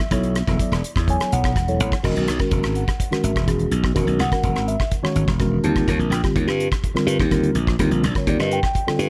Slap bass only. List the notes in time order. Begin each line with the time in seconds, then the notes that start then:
0.11 B1
0.48 E1
0.72 E1
0.96 E2
1.20 muted slap bass stroke
1.32 B1
1.56 E1
1.80 A1
2.04 E1
2.17 B1
2.28 B1
2.52 E1
2.64 G#1
3.12 muted slap bass stroke
3.24 G#1
3.36 E1
3.71 B1
3.96 E1
4.07 B1
4.19 B1
4.44 E1
4.55 G#1
5.04 muted slap bass stroke
5.16 G#1
5.28 E1
5.64 D#2
5.88 D#2
5.99 A#1
6.10 A#1
6.36 D#2
6.47 G2
6.95 muted slap bass stroke
7.07 G2
7.20 D#2
7.55 A#1
7.79 D#2
7.91 A#1
8.04 A#1
8.27 D#2
8.39 G2
8.88 muted slap bass stroke
8.99 G2